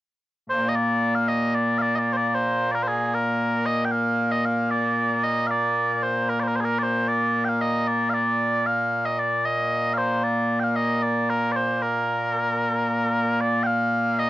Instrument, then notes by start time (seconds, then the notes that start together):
bagpipes
0.50 A#2 A#3 C5
0.69 D#5
0.75 D5
1.15 F5
1.28 D#5
1.55 D5
1.78 D5 F5
1.95 D5 D#5
2.13 C5 D5
2.27 D5
2.35 C5
2.71 A#4 D5
2.83 C5
2.88 G#4
3.14 A#4
3.66 D#5
3.85 G5
3.92 F5
4.31 D#5
4.45 F5
4.71 D5
5.24 D#5
5.47 D5 F5
6.03 C5
6.29 A#4
6.40 C5 D5
6.48 A#4
6.56 C5
6.60 G#4
6.64 A#4
6.79 D5
6.83 C5
7.08 D5
7.45 G5
7.49 F5
7.61 D#5
7.88 D5
8.10 F5
8.14 D5
8.66 F5
9.05 D#5
9.19 D5
9.45 D#5
9.93 F5
9.98 C5
10.24 D5
10.60 G5
10.64 F5
10.76 D#5
11.03 D5
11.30 A#4
11.52 C5 D5
11.82 A#4
13.41 D5
13.63 F5 G5
14.19 D#5